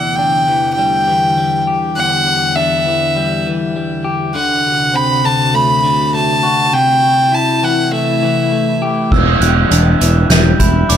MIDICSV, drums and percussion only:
0, 0, Header, 1, 2, 480
1, 0, Start_track
1, 0, Key_signature, 1, "minor"
1, 0, Tempo, 595238
1, 1593, Time_signature, 4, 2, 24, 8
1, 8847, End_track
2, 0, Start_track
2, 0, Title_t, "Drums"
2, 7353, Note_on_c, 9, 36, 89
2, 7353, Note_on_c, 9, 49, 86
2, 7433, Note_off_c, 9, 49, 0
2, 7434, Note_off_c, 9, 36, 0
2, 7592, Note_on_c, 9, 42, 57
2, 7673, Note_off_c, 9, 42, 0
2, 7833, Note_on_c, 9, 42, 76
2, 7914, Note_off_c, 9, 42, 0
2, 8074, Note_on_c, 9, 42, 54
2, 8154, Note_off_c, 9, 42, 0
2, 8306, Note_on_c, 9, 38, 96
2, 8306, Note_on_c, 9, 42, 79
2, 8387, Note_off_c, 9, 38, 0
2, 8387, Note_off_c, 9, 42, 0
2, 8546, Note_on_c, 9, 42, 64
2, 8547, Note_on_c, 9, 36, 64
2, 8627, Note_off_c, 9, 42, 0
2, 8628, Note_off_c, 9, 36, 0
2, 8786, Note_on_c, 9, 42, 86
2, 8847, Note_off_c, 9, 42, 0
2, 8847, End_track
0, 0, End_of_file